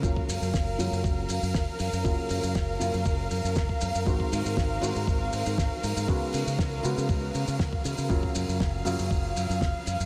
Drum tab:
HH |--o---o---o---o-|--o---o-o-o---o-|--o---o---o---o-|--o---o-o-o---o-|
SH |x-xxx-xxx-xxx-xx|x-xxx-xxx-xxx-xx|x-xxx-xxx-xxx-xx|x-xxx-xxx-xxx-xx|
SD |----o-------o---|----o-------o---|----o-------o---|----o-------o---|
BD |oo--o---o---o---|o---o---o---oo--|oo--o---o---o---|o---o---o---oo--|

HH |--o---o---o---o-|
SH |x-xxx-xxx-xxx-xx|
SD |----o-------o---|
BD |oo--o---o---o---|